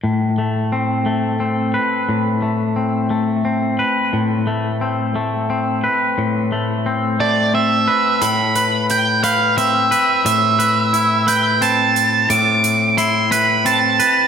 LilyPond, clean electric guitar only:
\new Staff \with { instrumentName = "Clean electric guitar" } { \time 6/8 \key a \minor \tempo 4. = 59 a,8 a8 c'8 a8 c'8 b'8 | a,8 a8 c'8 a8 c'8 b'8 | a,8 a8 c'8 a8 c'8 b'8 | a,8 a8 c'8 a8 c'8 b'8 |
a,8 b'4 b'8 c'8 b'8 | a,8 b'8 e'8 b'8 c'4 | a,4 e'8 b'8 c'8 b'8 | }